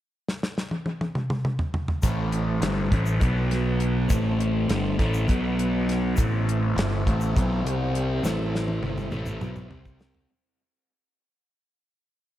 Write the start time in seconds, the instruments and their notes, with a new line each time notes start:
0.28 snare
0.43 snare
0.58 snare
0.71 high tom
0.86 high tom
1.01 high tom
1.15 mid tom
1.30 mid tom
1.45 mid tom
1.59 floor tom
1.74 floor tom
1.88 floor tom
2.02 picked electric bass A1, distorted electric guitar A2 E3 A3, tonewheel organ A3 C4 E4 A4 C5, kick, closed hi-hat, shaker
2.32 closed hi-hat
2.61 picked electric bass G1, distorted electric guitar G2 D3 G3, snare, closed hi-hat
2.91 picked electric bass A1, distorted electric guitar A2 E3 A3, kick, closed hi-hat
3.06 shaker
3.21 picked electric bass B1, distorted electric guitar B2 F#3 B3, tonewheel organ F#3 B3 F#4 B4 F#5, kick, closed hi-hat, shaker
3.51 snare, closed hi-hat
3.80 closed hi-hat
4.08 picked electric bass A1, distorted electric guitar A2 E3 A3, tonewheel organ A3 C4 E4 A4 C5, kick, closed hi-hat, shaker
4.40 closed hi-hat
4.68 picked electric bass G1, distorted electric guitar G2 D3 G3, snare, closed hi-hat
4.98 picked electric bass A1, distorted electric guitar A2 E3 A3, kick, snare, closed hi-hat
5.14 shaker
5.27 picked electric bass B1, distorted electric guitar B2 F#3 B3, tonewheel organ F#3 B3 F#4 B4 F#5, kick, closed hi-hat, shaker
5.59 closed hi-hat
5.89 snare, closed hi-hat
6.16 picked electric bass A1, distorted electric guitar A2 E3 A3, tonewheel organ C4 E4 A4 C5 E5, kick, closed hi-hat, shaker
6.49 closed hi-hat
6.76 picked electric bass G1, distorted electric guitar G2 D3 G3, snare, closed hi-hat
7.05 picked electric bass A1, distorted electric guitar A2 E3 A3, kick, closed hi-hat
7.21 shaker
7.36 picked electric bass B1, distorted electric guitar B2 F#3 B3, kick, closed hi-hat, shaker
7.64 picked electric bass C2, distorted electric guitar C3 G3 C4, tonewheel organ G3 C4 G4 G5, closed hi-hat
7.95 closed hi-hat
8.23 picked electric bass A1, distorted electric guitar A2 E3 A3, tonewheel organ E4 A4 E5, snare, shaker
8.39 high tom
8.55 snare
8.68 high tom
8.82 picked electric bass G1, distorted electric guitar G2 D3 G3, mid tom
8.97 mid tom, shaker
9.11 picked electric bass A1, distorted electric guitar A2 E3 A3, mid tom, shaker
9.26 mid tom, shaker
9.40 picked electric bass B1, distorted electric guitar B2 F#3 B3, mid tom, shaker
9.56 mid tom, shaker
9.69 picked electric bass C2, distorted electric guitar C3 G3 C4, tonewheel organ G3 C4 G4 G5, floor tom
9.85 kick, shaker
9.99 snare, shaker
10.15 floor tom